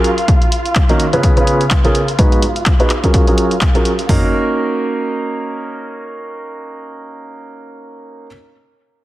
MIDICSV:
0, 0, Header, 1, 4, 480
1, 0, Start_track
1, 0, Key_signature, -6, "minor"
1, 0, Tempo, 476190
1, 284, Time_signature, 4, 2, 24, 8
1, 9116, End_track
2, 0, Start_track
2, 0, Title_t, "Violin section"
2, 0, Program_c, 0, 48
2, 0, Note_on_c, 0, 65, 83
2, 0, Note_on_c, 0, 77, 83
2, 4135, Note_off_c, 0, 65, 0
2, 4135, Note_off_c, 0, 77, 0
2, 9116, End_track
3, 0, Start_track
3, 0, Title_t, "Grand piano"
3, 0, Program_c, 1, 0
3, 900, Note_on_c, 1, 70, 94
3, 901, Note_on_c, 1, 51, 88
3, 901, Note_on_c, 1, 58, 80
3, 901, Note_on_c, 1, 61, 79
3, 901, Note_on_c, 1, 63, 78
3, 901, Note_on_c, 1, 66, 76
3, 1039, Note_off_c, 1, 51, 0
3, 1039, Note_off_c, 1, 58, 0
3, 1039, Note_off_c, 1, 61, 0
3, 1039, Note_off_c, 1, 63, 0
3, 1039, Note_off_c, 1, 66, 0
3, 1039, Note_off_c, 1, 70, 0
3, 1141, Note_on_c, 1, 49, 77
3, 1141, Note_on_c, 1, 59, 71
3, 1141, Note_on_c, 1, 61, 72
3, 1141, Note_on_c, 1, 65, 72
3, 1141, Note_on_c, 1, 68, 72
3, 1141, Note_on_c, 1, 71, 84
3, 1340, Note_off_c, 1, 49, 0
3, 1340, Note_off_c, 1, 59, 0
3, 1340, Note_off_c, 1, 61, 0
3, 1340, Note_off_c, 1, 65, 0
3, 1340, Note_off_c, 1, 68, 0
3, 1340, Note_off_c, 1, 71, 0
3, 1380, Note_on_c, 1, 49, 77
3, 1380, Note_on_c, 1, 59, 73
3, 1380, Note_on_c, 1, 61, 72
3, 1380, Note_on_c, 1, 65, 72
3, 1380, Note_on_c, 1, 68, 73
3, 1380, Note_on_c, 1, 71, 89
3, 1621, Note_off_c, 1, 49, 0
3, 1621, Note_off_c, 1, 59, 0
3, 1621, Note_off_c, 1, 61, 0
3, 1621, Note_off_c, 1, 65, 0
3, 1621, Note_off_c, 1, 68, 0
3, 1621, Note_off_c, 1, 71, 0
3, 1861, Note_on_c, 1, 49, 87
3, 1861, Note_on_c, 1, 59, 77
3, 1861, Note_on_c, 1, 61, 78
3, 1861, Note_on_c, 1, 65, 80
3, 1861, Note_on_c, 1, 68, 77
3, 1861, Note_on_c, 1, 70, 97
3, 1999, Note_off_c, 1, 49, 0
3, 1999, Note_off_c, 1, 59, 0
3, 1999, Note_off_c, 1, 61, 0
3, 1999, Note_off_c, 1, 65, 0
3, 1999, Note_off_c, 1, 68, 0
3, 1999, Note_off_c, 1, 70, 0
3, 2205, Note_on_c, 1, 44, 83
3, 2205, Note_on_c, 1, 59, 75
3, 2205, Note_on_c, 1, 63, 74
3, 2205, Note_on_c, 1, 66, 75
3, 2205, Note_on_c, 1, 68, 75
3, 2205, Note_on_c, 1, 71, 91
3, 2445, Note_off_c, 1, 44, 0
3, 2445, Note_off_c, 1, 59, 0
3, 2445, Note_off_c, 1, 63, 0
3, 2445, Note_off_c, 1, 66, 0
3, 2445, Note_off_c, 1, 68, 0
3, 2445, Note_off_c, 1, 71, 0
3, 2821, Note_on_c, 1, 59, 85
3, 2821, Note_on_c, 1, 63, 77
3, 2821, Note_on_c, 1, 66, 78
3, 2821, Note_on_c, 1, 68, 78
3, 2821, Note_on_c, 1, 71, 95
3, 2912, Note_off_c, 1, 59, 0
3, 2912, Note_off_c, 1, 63, 0
3, 2912, Note_off_c, 1, 66, 0
3, 2912, Note_off_c, 1, 68, 0
3, 2912, Note_off_c, 1, 71, 0
3, 3060, Note_on_c, 1, 54, 75
3, 3061, Note_on_c, 1, 61, 68
3, 3061, Note_on_c, 1, 65, 68
3, 3061, Note_on_c, 1, 66, 69
3, 3061, Note_on_c, 1, 68, 68
3, 3061, Note_on_c, 1, 70, 83
3, 3259, Note_off_c, 1, 54, 0
3, 3259, Note_off_c, 1, 65, 0
3, 3260, Note_off_c, 1, 61, 0
3, 3260, Note_off_c, 1, 66, 0
3, 3260, Note_off_c, 1, 68, 0
3, 3260, Note_off_c, 1, 70, 0
3, 3301, Note_on_c, 1, 54, 78
3, 3301, Note_on_c, 1, 61, 69
3, 3301, Note_on_c, 1, 65, 70
3, 3301, Note_on_c, 1, 66, 73
3, 3301, Note_on_c, 1, 68, 71
3, 3301, Note_on_c, 1, 70, 85
3, 3541, Note_off_c, 1, 54, 0
3, 3541, Note_off_c, 1, 61, 0
3, 3541, Note_off_c, 1, 65, 0
3, 3541, Note_off_c, 1, 66, 0
3, 3541, Note_off_c, 1, 68, 0
3, 3541, Note_off_c, 1, 70, 0
3, 3781, Note_on_c, 1, 54, 86
3, 3781, Note_on_c, 1, 61, 78
3, 3781, Note_on_c, 1, 65, 75
3, 3781, Note_on_c, 1, 66, 78
3, 3781, Note_on_c, 1, 68, 76
3, 3781, Note_on_c, 1, 70, 91
3, 3919, Note_off_c, 1, 54, 0
3, 3919, Note_off_c, 1, 61, 0
3, 3919, Note_off_c, 1, 65, 0
3, 3919, Note_off_c, 1, 66, 0
3, 3919, Note_off_c, 1, 68, 0
3, 3919, Note_off_c, 1, 70, 0
3, 4124, Note_on_c, 1, 58, 77
3, 4124, Note_on_c, 1, 61, 73
3, 4124, Note_on_c, 1, 63, 72
3, 4124, Note_on_c, 1, 66, 69
3, 4124, Note_on_c, 1, 70, 84
3, 8325, Note_off_c, 1, 58, 0
3, 8325, Note_off_c, 1, 61, 0
3, 8325, Note_off_c, 1, 63, 0
3, 8325, Note_off_c, 1, 66, 0
3, 8325, Note_off_c, 1, 70, 0
3, 9116, End_track
4, 0, Start_track
4, 0, Title_t, "Drums"
4, 44, Note_on_c, 9, 42, 69
4, 145, Note_off_c, 9, 42, 0
4, 180, Note_on_c, 9, 42, 47
4, 281, Note_off_c, 9, 42, 0
4, 284, Note_on_c, 9, 36, 107
4, 284, Note_on_c, 9, 42, 74
4, 385, Note_off_c, 9, 36, 0
4, 385, Note_off_c, 9, 42, 0
4, 420, Note_on_c, 9, 42, 36
4, 521, Note_off_c, 9, 42, 0
4, 524, Note_on_c, 9, 42, 75
4, 625, Note_off_c, 9, 42, 0
4, 660, Note_on_c, 9, 42, 47
4, 760, Note_on_c, 9, 39, 104
4, 761, Note_off_c, 9, 42, 0
4, 764, Note_on_c, 9, 36, 100
4, 764, Note_on_c, 9, 42, 72
4, 861, Note_off_c, 9, 39, 0
4, 865, Note_off_c, 9, 36, 0
4, 865, Note_off_c, 9, 42, 0
4, 901, Note_on_c, 9, 42, 35
4, 1001, Note_off_c, 9, 42, 0
4, 1004, Note_on_c, 9, 42, 77
4, 1105, Note_off_c, 9, 42, 0
4, 1140, Note_on_c, 9, 42, 52
4, 1241, Note_off_c, 9, 42, 0
4, 1244, Note_on_c, 9, 36, 102
4, 1244, Note_on_c, 9, 42, 76
4, 1345, Note_off_c, 9, 36, 0
4, 1345, Note_off_c, 9, 42, 0
4, 1380, Note_on_c, 9, 42, 34
4, 1481, Note_off_c, 9, 42, 0
4, 1484, Note_on_c, 9, 42, 71
4, 1585, Note_off_c, 9, 42, 0
4, 1620, Note_on_c, 9, 42, 49
4, 1720, Note_on_c, 9, 39, 104
4, 1721, Note_off_c, 9, 42, 0
4, 1724, Note_on_c, 9, 36, 97
4, 1724, Note_on_c, 9, 42, 77
4, 1821, Note_off_c, 9, 39, 0
4, 1825, Note_off_c, 9, 36, 0
4, 1825, Note_off_c, 9, 42, 0
4, 1860, Note_on_c, 9, 42, 36
4, 1961, Note_off_c, 9, 42, 0
4, 1965, Note_on_c, 9, 42, 73
4, 2065, Note_off_c, 9, 42, 0
4, 2101, Note_on_c, 9, 42, 50
4, 2201, Note_off_c, 9, 42, 0
4, 2204, Note_on_c, 9, 36, 108
4, 2204, Note_on_c, 9, 42, 76
4, 2305, Note_off_c, 9, 36, 0
4, 2305, Note_off_c, 9, 42, 0
4, 2341, Note_on_c, 9, 42, 36
4, 2442, Note_off_c, 9, 42, 0
4, 2444, Note_on_c, 9, 42, 81
4, 2545, Note_off_c, 9, 42, 0
4, 2580, Note_on_c, 9, 42, 49
4, 2681, Note_off_c, 9, 42, 0
4, 2681, Note_on_c, 9, 39, 108
4, 2684, Note_on_c, 9, 36, 103
4, 2684, Note_on_c, 9, 42, 75
4, 2781, Note_off_c, 9, 39, 0
4, 2785, Note_off_c, 9, 36, 0
4, 2785, Note_off_c, 9, 42, 0
4, 2821, Note_on_c, 9, 42, 36
4, 2920, Note_on_c, 9, 39, 56
4, 2921, Note_off_c, 9, 42, 0
4, 2924, Note_on_c, 9, 42, 76
4, 3021, Note_off_c, 9, 39, 0
4, 3025, Note_off_c, 9, 42, 0
4, 3060, Note_on_c, 9, 36, 52
4, 3061, Note_on_c, 9, 42, 52
4, 3161, Note_off_c, 9, 36, 0
4, 3161, Note_off_c, 9, 42, 0
4, 3164, Note_on_c, 9, 36, 103
4, 3164, Note_on_c, 9, 42, 71
4, 3265, Note_off_c, 9, 36, 0
4, 3265, Note_off_c, 9, 42, 0
4, 3300, Note_on_c, 9, 42, 35
4, 3401, Note_off_c, 9, 42, 0
4, 3404, Note_on_c, 9, 42, 75
4, 3505, Note_off_c, 9, 42, 0
4, 3540, Note_on_c, 9, 42, 49
4, 3640, Note_on_c, 9, 39, 112
4, 3641, Note_off_c, 9, 42, 0
4, 3644, Note_on_c, 9, 36, 103
4, 3644, Note_on_c, 9, 42, 74
4, 3741, Note_off_c, 9, 39, 0
4, 3745, Note_off_c, 9, 36, 0
4, 3745, Note_off_c, 9, 42, 0
4, 3780, Note_on_c, 9, 42, 35
4, 3881, Note_off_c, 9, 42, 0
4, 3884, Note_on_c, 9, 42, 74
4, 3985, Note_off_c, 9, 42, 0
4, 4020, Note_on_c, 9, 42, 47
4, 4121, Note_off_c, 9, 42, 0
4, 4124, Note_on_c, 9, 36, 97
4, 4124, Note_on_c, 9, 43, 97
4, 4124, Note_on_c, 9, 46, 84
4, 4224, Note_off_c, 9, 43, 0
4, 4224, Note_off_c, 9, 46, 0
4, 4225, Note_off_c, 9, 36, 0
4, 9116, End_track
0, 0, End_of_file